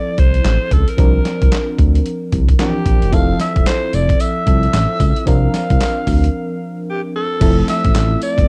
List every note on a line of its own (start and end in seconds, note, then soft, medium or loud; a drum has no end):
0.00 0.94 F3 medium
0.00 0.94 C4 medium
0.00 0.95 E4 medium
0.00 0.95 A4 medium
0.00 0.21 D5 loud
0.18 0.40 C2 medium
0.18 0.74 C5 loud
0.18 kick loud
0.18 closed hi-hat medium
0.34 closed hi-hat soft
0.45 0.58 A1 loud
0.45 snare loud
0.45 clap medium
0.45 closed hi-hat medium
0.71 0.85 C#2 medium
0.71 0.91 A4 medium
0.71 kick loud
0.71 closed hi-hat medium
0.88 1.96 A#4 medium
0.88 closed hi-hat medium
0.97 1.20 C2 loud
0.97 2.55 F3 medium
0.97 2.56 C4 medium
0.97 2.56 D4 medium
0.97 2.56 A#4 medium
0.97 kick loud
0.97 closed hi-hat medium
1.25 snare medium
1.25 closed hi-hat medium
1.42 1.50 C2 medium
1.42 kick medium
1.42 closed hi-hat medium
1.52 snare loud
1.52 clap loud
1.52 closed hi-hat medium
1.79 2.00 D2 medium
1.79 kick loud
1.79 closed hi-hat medium
1.95 closed hi-hat medium
2.06 closed hi-hat medium
2.32 2.54 C2 medium
2.32 kick loud
2.32 closed hi-hat medium
2.49 kick medium
2.49 closed hi-hat medium
2.59 2.67 E3 soft
2.59 3.11 C4 soft
2.59 3.13 D4 soft
2.59 3.16 G4 loud
2.59 3.13 A#4 medium
2.59 snare loud
2.59 clap medium
2.59 closed hi-hat medium
2.65 3.10 F3 soft
2.86 2.99 A#1 medium
2.86 kick loud
2.86 closed hi-hat medium
3.02 3.11 F#1 medium
3.02 closed hi-hat medium
3.12 3.34 F1 loud
3.12 4.43 F3 medium
3.12 4.44 C4 medium
3.12 4.44 E4 medium
3.12 4.45 A4 medium
3.12 3.40 F5 loud
3.12 kick loud
3.12 closed hi-hat medium
3.12 tambourine medium
3.40 3.65 E5 loud
3.40 snare medium
3.40 closed hi-hat medium
3.40 tambourine medium
3.56 3.64 E1 medium
3.56 kick loud
3.56 closed hi-hat medium
3.66 3.96 C5 loud
3.66 snare loud
3.66 clap loud
3.66 closed hi-hat medium
3.66 tambourine medium
3.93 4.15 F1 medium
3.93 4.23 D5 loud
3.93 closed hi-hat medium
3.93 tambourine medium
4.09 kick loud
4.09 closed hi-hat medium
4.20 5.27 E5 loud
4.20 closed hi-hat medium
4.20 tambourine medium
4.46 4.68 C2 medium
4.46 5.25 F3 soft
4.46 5.25 C4 soft
4.46 5.27 E4 soft
4.46 5.27 A4 medium
4.46 kick loud
4.46 closed hi-hat medium
4.63 closed hi-hat soft
4.73 4.87 A1 loud
4.73 snare loud
4.73 clap loud
4.73 closed hi-hat medium
4.73 tambourine loud
5.00 5.13 C#2 medium
5.00 kick loud
5.00 closed hi-hat medium
5.00 tambourine medium
5.16 closed hi-hat medium
5.26 5.49 C2 loud
5.26 7.37 F3 medium
5.26 7.37 C4 medium
5.26 7.37 D4 medium
5.26 7.38 A#4 medium
5.26 6.84 F5 loud
5.26 kick loud
5.26 closed hi-hat medium
5.26 tambourine medium
5.54 snare medium
5.54 closed hi-hat medium
5.54 tambourine medium
5.70 5.79 C2 medium
5.70 kick loud
5.70 closed hi-hat medium
5.80 snare loud
5.80 clap medium
5.80 closed hi-hat medium
5.80 tambourine medium
6.07 6.29 D2 medium
6.07 kick loud
6.07 open hi-hat medium
6.07 tambourine medium
6.24 closed hi-hat medium
6.89 7.01 G4 medium
7.16 7.65 A4 loud
7.40 7.63 F1 loud
7.40 8.48 F3 medium
7.40 8.48 A3 medium
7.40 8.48 C4 medium
7.40 8.48 E4 medium
7.40 8.48 A4 medium
7.40 kick loud
7.40 closed hi-hat medium
7.40 crash loud
7.40 tambourine medium
7.68 8.19 E5 loud
7.68 snare medium
7.68 closed hi-hat medium
7.68 tambourine medium
7.85 7.93 A1 medium
7.85 kick loud
7.85 closed hi-hat medium
7.95 8.16 A1 loud
7.95 snare loud
7.95 clap loud
7.95 closed hi-hat medium
7.95 tambourine medium
8.22 8.48 D5 loud
8.22 closed hi-hat medium
8.22 tambourine medium
8.38 8.46 G1 medium
8.38 kick loud
8.38 closed hi-hat medium